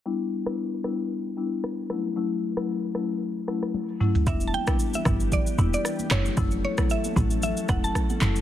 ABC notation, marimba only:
X:1
M:4/4
L:1/16
Q:"Swing 16ths" 1/4=114
K:Edor
V:1 name="Marimba"
[G,B,DE] z2 [G,B,DE] z2 [G,B,DE] z3 [G,B,DE] z3 [F,A,CE] z | [F,A,CE] z2 [F,A,CE] z2 [F,A,CE] z3 [F,A,CE] z3 [F,A,CE] z | [G,B,DE] z2 [G,B,DE] z2 [G,B,DE] z3 [G,B,DE] z3 [F,A,CE] z | [F,A,CE] z2 [F,A,CE] z2 [F,A,CE] z3 [F,A,CE] z3 [F,A,CE] z |]